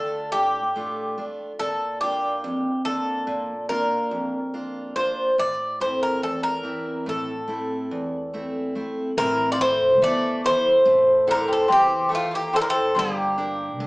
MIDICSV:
0, 0, Header, 1, 5, 480
1, 0, Start_track
1, 0, Tempo, 840336
1, 913, Time_signature, 9, 3, 24, 8
1, 7922, End_track
2, 0, Start_track
2, 0, Title_t, "Bouzouki"
2, 0, Program_c, 0, 25
2, 0, Note_on_c, 0, 69, 71
2, 175, Note_off_c, 0, 69, 0
2, 183, Note_on_c, 0, 67, 75
2, 704, Note_off_c, 0, 67, 0
2, 911, Note_on_c, 0, 69, 77
2, 1144, Note_off_c, 0, 69, 0
2, 1147, Note_on_c, 0, 67, 72
2, 1606, Note_off_c, 0, 67, 0
2, 1629, Note_on_c, 0, 69, 81
2, 2087, Note_off_c, 0, 69, 0
2, 2109, Note_on_c, 0, 70, 74
2, 2830, Note_off_c, 0, 70, 0
2, 2832, Note_on_c, 0, 72, 75
2, 3055, Note_off_c, 0, 72, 0
2, 3081, Note_on_c, 0, 74, 82
2, 3318, Note_off_c, 0, 74, 0
2, 3321, Note_on_c, 0, 72, 73
2, 3428, Note_off_c, 0, 72, 0
2, 3443, Note_on_c, 0, 70, 67
2, 3558, Note_off_c, 0, 70, 0
2, 3561, Note_on_c, 0, 69, 62
2, 3672, Note_off_c, 0, 69, 0
2, 3675, Note_on_c, 0, 70, 79
2, 4045, Note_off_c, 0, 70, 0
2, 4050, Note_on_c, 0, 69, 63
2, 4740, Note_off_c, 0, 69, 0
2, 5242, Note_on_c, 0, 70, 93
2, 5435, Note_off_c, 0, 70, 0
2, 5437, Note_on_c, 0, 74, 78
2, 5476, Note_off_c, 0, 74, 0
2, 5490, Note_on_c, 0, 72, 92
2, 5730, Note_off_c, 0, 72, 0
2, 5733, Note_on_c, 0, 74, 86
2, 5948, Note_off_c, 0, 74, 0
2, 5973, Note_on_c, 0, 72, 95
2, 6423, Note_off_c, 0, 72, 0
2, 6459, Note_on_c, 0, 70, 86
2, 6561, Note_off_c, 0, 70, 0
2, 6584, Note_on_c, 0, 69, 69
2, 6683, Note_off_c, 0, 69, 0
2, 6696, Note_on_c, 0, 67, 81
2, 6911, Note_off_c, 0, 67, 0
2, 6939, Note_on_c, 0, 65, 77
2, 7041, Note_off_c, 0, 65, 0
2, 7055, Note_on_c, 0, 67, 72
2, 7159, Note_off_c, 0, 67, 0
2, 7174, Note_on_c, 0, 69, 80
2, 7203, Note_off_c, 0, 69, 0
2, 7206, Note_on_c, 0, 70, 68
2, 7242, Note_off_c, 0, 70, 0
2, 7254, Note_on_c, 0, 69, 86
2, 7395, Note_off_c, 0, 69, 0
2, 7419, Note_on_c, 0, 67, 83
2, 7922, Note_off_c, 0, 67, 0
2, 7922, End_track
3, 0, Start_track
3, 0, Title_t, "Steel-string acoustic guitar"
3, 0, Program_c, 1, 25
3, 0, Note_on_c, 1, 50, 64
3, 0, Note_on_c, 1, 57, 41
3, 0, Note_on_c, 1, 62, 41
3, 0, Note_on_c, 1, 65, 41
3, 183, Note_off_c, 1, 50, 0
3, 198, Note_on_c, 1, 45, 54
3, 338, Note_off_c, 1, 62, 0
3, 339, Note_off_c, 1, 57, 0
3, 340, Note_off_c, 1, 65, 0
3, 432, Note_on_c, 1, 57, 43
3, 438, Note_on_c, 1, 62, 36
3, 439, Note_on_c, 1, 65, 47
3, 661, Note_off_c, 1, 45, 0
3, 665, Note_off_c, 1, 57, 0
3, 669, Note_off_c, 1, 62, 0
3, 670, Note_off_c, 1, 65, 0
3, 672, Note_on_c, 1, 57, 45
3, 675, Note_on_c, 1, 62, 42
3, 679, Note_on_c, 1, 65, 39
3, 864, Note_off_c, 1, 57, 0
3, 867, Note_off_c, 1, 62, 0
3, 867, Note_off_c, 1, 65, 0
3, 915, Note_on_c, 1, 46, 65
3, 1157, Note_on_c, 1, 65, 45
3, 1162, Note_on_c, 1, 62, 39
3, 1164, Note_on_c, 1, 58, 41
3, 1379, Note_off_c, 1, 46, 0
3, 1393, Note_on_c, 1, 41, 66
3, 1539, Note_off_c, 1, 58, 0
3, 1540, Note_off_c, 1, 62, 0
3, 1540, Note_off_c, 1, 65, 0
3, 1629, Note_on_c, 1, 58, 42
3, 1634, Note_on_c, 1, 62, 36
3, 1634, Note_on_c, 1, 65, 45
3, 1858, Note_off_c, 1, 41, 0
3, 1868, Note_on_c, 1, 46, 67
3, 2015, Note_off_c, 1, 58, 0
3, 2016, Note_off_c, 1, 62, 0
3, 2017, Note_off_c, 1, 65, 0
3, 2112, Note_on_c, 1, 65, 51
3, 2115, Note_on_c, 1, 62, 41
3, 2118, Note_on_c, 1, 58, 38
3, 2335, Note_off_c, 1, 46, 0
3, 2349, Note_on_c, 1, 41, 61
3, 2496, Note_off_c, 1, 62, 0
3, 2497, Note_off_c, 1, 58, 0
3, 2497, Note_off_c, 1, 65, 0
3, 2592, Note_on_c, 1, 58, 41
3, 2593, Note_on_c, 1, 62, 37
3, 2597, Note_on_c, 1, 65, 43
3, 2816, Note_off_c, 1, 41, 0
3, 2825, Note_off_c, 1, 58, 0
3, 2827, Note_off_c, 1, 62, 0
3, 2829, Note_off_c, 1, 65, 0
3, 2831, Note_on_c, 1, 58, 44
3, 2836, Note_on_c, 1, 62, 37
3, 2836, Note_on_c, 1, 65, 54
3, 3024, Note_off_c, 1, 58, 0
3, 3025, Note_off_c, 1, 62, 0
3, 3026, Note_off_c, 1, 65, 0
3, 3074, Note_on_c, 1, 45, 58
3, 3314, Note_on_c, 1, 57, 39
3, 3316, Note_on_c, 1, 60, 35
3, 3317, Note_on_c, 1, 64, 48
3, 3539, Note_off_c, 1, 45, 0
3, 3555, Note_on_c, 1, 40, 56
3, 3698, Note_off_c, 1, 57, 0
3, 3698, Note_off_c, 1, 60, 0
3, 3699, Note_off_c, 1, 64, 0
3, 3788, Note_on_c, 1, 52, 38
3, 3795, Note_on_c, 1, 60, 37
3, 3795, Note_on_c, 1, 64, 48
3, 4020, Note_off_c, 1, 40, 0
3, 4034, Note_on_c, 1, 45, 60
3, 4175, Note_off_c, 1, 52, 0
3, 4176, Note_off_c, 1, 60, 0
3, 4179, Note_off_c, 1, 64, 0
3, 4271, Note_on_c, 1, 57, 43
3, 4274, Note_on_c, 1, 60, 33
3, 4279, Note_on_c, 1, 64, 45
3, 4500, Note_off_c, 1, 45, 0
3, 4520, Note_on_c, 1, 40, 60
3, 4656, Note_off_c, 1, 57, 0
3, 4659, Note_off_c, 1, 60, 0
3, 4660, Note_off_c, 1, 64, 0
3, 4762, Note_on_c, 1, 57, 41
3, 4765, Note_on_c, 1, 60, 37
3, 4768, Note_on_c, 1, 64, 45
3, 4983, Note_off_c, 1, 40, 0
3, 4993, Note_off_c, 1, 57, 0
3, 4997, Note_off_c, 1, 60, 0
3, 4998, Note_off_c, 1, 64, 0
3, 5000, Note_on_c, 1, 57, 43
3, 5003, Note_on_c, 1, 60, 42
3, 5007, Note_on_c, 1, 64, 44
3, 5190, Note_off_c, 1, 57, 0
3, 5192, Note_off_c, 1, 60, 0
3, 5193, Note_off_c, 1, 64, 0
3, 5242, Note_on_c, 1, 60, 64
3, 5485, Note_on_c, 1, 64, 50
3, 5486, Note_off_c, 1, 60, 0
3, 5489, Note_on_c, 1, 69, 37
3, 5492, Note_on_c, 1, 72, 51
3, 5721, Note_on_c, 1, 52, 65
3, 5866, Note_off_c, 1, 64, 0
3, 5866, Note_off_c, 1, 69, 0
3, 5870, Note_off_c, 1, 72, 0
3, 5965, Note_on_c, 1, 64, 40
3, 5968, Note_on_c, 1, 69, 34
3, 5970, Note_on_c, 1, 72, 48
3, 6185, Note_off_c, 1, 52, 0
3, 6200, Note_on_c, 1, 57, 71
3, 6347, Note_off_c, 1, 64, 0
3, 6347, Note_off_c, 1, 69, 0
3, 6349, Note_off_c, 1, 72, 0
3, 6438, Note_on_c, 1, 64, 48
3, 6441, Note_on_c, 1, 69, 44
3, 6445, Note_on_c, 1, 72, 48
3, 6665, Note_off_c, 1, 57, 0
3, 6687, Note_on_c, 1, 52, 61
3, 6822, Note_off_c, 1, 64, 0
3, 6824, Note_off_c, 1, 69, 0
3, 6826, Note_off_c, 1, 72, 0
3, 6920, Note_on_c, 1, 64, 46
3, 6921, Note_on_c, 1, 69, 39
3, 6927, Note_on_c, 1, 72, 47
3, 7148, Note_off_c, 1, 52, 0
3, 7150, Note_off_c, 1, 64, 0
3, 7153, Note_off_c, 1, 69, 0
3, 7154, Note_off_c, 1, 72, 0
3, 7157, Note_on_c, 1, 64, 47
3, 7158, Note_on_c, 1, 69, 43
3, 7163, Note_on_c, 1, 72, 47
3, 7349, Note_off_c, 1, 64, 0
3, 7351, Note_off_c, 1, 69, 0
3, 7352, Note_off_c, 1, 72, 0
3, 7405, Note_on_c, 1, 55, 67
3, 7639, Note_off_c, 1, 55, 0
3, 7641, Note_on_c, 1, 62, 48
3, 7646, Note_on_c, 1, 67, 44
3, 7649, Note_on_c, 1, 70, 46
3, 7883, Note_on_c, 1, 50, 63
3, 7922, Note_off_c, 1, 50, 0
3, 7922, Note_off_c, 1, 62, 0
3, 7922, Note_off_c, 1, 67, 0
3, 7922, Note_off_c, 1, 70, 0
3, 7922, End_track
4, 0, Start_track
4, 0, Title_t, "Bouzouki"
4, 0, Program_c, 2, 25
4, 5250, Note_on_c, 2, 52, 74
4, 5429, Note_off_c, 2, 52, 0
4, 5442, Note_on_c, 2, 53, 51
4, 5476, Note_off_c, 2, 53, 0
4, 5487, Note_on_c, 2, 52, 75
4, 5705, Note_off_c, 2, 52, 0
4, 5725, Note_on_c, 2, 57, 89
4, 5944, Note_off_c, 2, 57, 0
4, 5973, Note_on_c, 2, 52, 78
4, 6422, Note_off_c, 2, 52, 0
4, 6440, Note_on_c, 2, 50, 78
4, 6550, Note_off_c, 2, 50, 0
4, 6556, Note_on_c, 2, 48, 64
4, 6665, Note_off_c, 2, 48, 0
4, 6672, Note_on_c, 2, 48, 76
4, 6898, Note_off_c, 2, 48, 0
4, 6906, Note_on_c, 2, 57, 70
4, 7023, Note_off_c, 2, 57, 0
4, 7034, Note_on_c, 2, 58, 63
4, 7147, Note_off_c, 2, 58, 0
4, 7160, Note_on_c, 2, 48, 69
4, 7184, Note_off_c, 2, 48, 0
4, 7186, Note_on_c, 2, 50, 62
4, 7229, Note_off_c, 2, 50, 0
4, 7251, Note_on_c, 2, 48, 69
4, 7394, Note_off_c, 2, 48, 0
4, 7395, Note_on_c, 2, 58, 67
4, 7922, Note_off_c, 2, 58, 0
4, 7922, End_track
5, 0, Start_track
5, 0, Title_t, "Upright bass"
5, 0, Program_c, 3, 32
5, 5239, Note_on_c, 3, 33, 94
5, 5719, Note_off_c, 3, 33, 0
5, 5719, Note_on_c, 3, 40, 91
5, 6054, Note_off_c, 3, 40, 0
5, 6204, Note_on_c, 3, 33, 76
5, 6538, Note_off_c, 3, 33, 0
5, 6682, Note_on_c, 3, 40, 91
5, 7185, Note_off_c, 3, 40, 0
5, 7402, Note_on_c, 3, 31, 82
5, 7875, Note_off_c, 3, 31, 0
5, 7875, Note_on_c, 3, 38, 98
5, 7922, Note_off_c, 3, 38, 0
5, 7922, End_track
0, 0, End_of_file